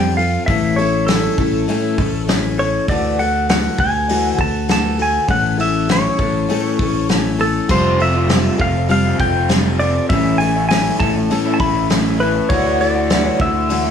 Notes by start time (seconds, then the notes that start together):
Already playing: F2 G3 C4 F4 A4 G5
0.17 C4 F4 A4 F5, open hi-hat
0.46 A1 A2 E3 A3 C#4 E4 A4 E5, kick, open hi-hat
0.76 C#4 E4 A4 C#5, open hi-hat
0.81 A3
1.07 A3 C#4 E4 A4, snare, open hi-hat
1.11 A4
1.38 A1 A3 C#4 E4 A4, kick, open hi-hat
1.68 A2 E3 A3 C#4 E4 A4, open hi-hat
1.98 A1 A3 C#4 E4 A4, kick, open hi-hat
2.28 A3 C#4 E4 A4, snare, open hi-hat
2.58 A3 C#4 E4 A4 C#5, open hi-hat
2.88 D2 D3 E3 A3 F#4 A4 D5, kick, open hi-hat
3.19 A3 F#4 A4 F#5, open hi-hat
3.49 E3 A3 F#4 A4 F#5, snare, open hi-hat
3.78 D2 A3 F#4 A4 G#5, kick, open hi-hat
4.09 D3 E3 A3 F#4 A4, open hi-hat
4.38 D2 A3 F#4 A4 A5, kick, open hi-hat
4.68 E3 A3 F#4 A4, snare, open hi-hat
4.72 A5
4.97 A3 F#4 A4, open hi-hat
5.02 G#5
5.28 A1 A2 E3 A3 C#4 E4 A4 F#5, kick, open hi-hat
5.57 A3 C#4 E4 A4 E5, open hi-hat
5.88 A3 C#4 E4 A4 C#5, snare, open hi-hat
6.18 A1 A3 C#4 E4 A4, kick, open hi-hat
6.49 A2 E3 A3 C#4 E4 A4, open hi-hat
6.79 A1 A3 C#4 E4 A4, kick, open hi-hat
7.09 A3 C#4 E4 A4, snare, open hi-hat
7.39 A3 C#4 E4 A4, open hi-hat
7.69 F1 F2 C3 F3 G3 A3 C4 F4 A4 C5, kick, crash
7.98 C4 F4 A4 E5, open hi-hat
8.15 F3 A3 C4 F4
8.27 F2 C3 G3 C4 F4 A4, snare, open hi-hat
8.31 F3 A3 C4 F4
8.58 F1 F3 A3 C4 F4 A4 F5, kick, open hi-hat
8.62 F4
8.76 muted overdriven electric guitar stroke
8.88 F3 G3 C4 F4 A4 F5, open hi-hat
9.05 F3 A3 C4 F4
9.19 F1 F3 A3 C4 F4 A4 G5, kick, open hi-hat
9.23 F4
9.36 F3 A3 C4 F4
9.49 F2 C3 F3 G3 A3 C4 F4, snare, open hi-hat
9.53 A4
9.79 F3 A3 C4 F4 A4 D5, open hi-hat
9.95 muted overdriven electric guitar stroke
10.09 A1 A2 E3 A3 C#4 E4 A4 E5, kick, open hi-hat
10.38 A4 G#5, open hi-hat
10.42 A3 C#4 E4
10.55 A3 C#4 E4
10.69 A2 E3 A3 C#4 E4 A4 G#5, snare, open hi-hat
10.99 A1 E3 A3 C#4 E4 A4 A5, kick, open hi-hat
11.16 muted overdriven electric guitar stroke
11.30 A2 E3 A3 C#4 E4 A4, open hi-hat
11.45 A3 C#4 E4
11.54 A5
11.59 A1 E3 A3 C#4 E4 A4 B5, kick, open hi-hat
11.75 A3 C#4 E4
11.90 A2 E3 A3 C#4 E4 A4, snare, open hi-hat
12.19 E3 A3 C#4 E4 A4 B4, open hi-hat
12.35 muted overdriven electric guitar stroke
12.49 D2 D3 E3 A3 D4 E4 F#4 C#5, kick, open hi-hat
12.78 A3 E4 F#4 D5, open hi-hat
12.95 A3 D4 F#4
13.09 D3 E3 A3 D4 E4 F#4, snare, open hi-hat
13.25 C#5
13.39 D2 D3 A3 D4 E4 F#4 E5, kick
13.43 F#4
13.55 muted overdriven electric guitar stroke
13.69 D3 E3 A3 E4 F#4, open hi-hat
13.85 A3 D4 F#4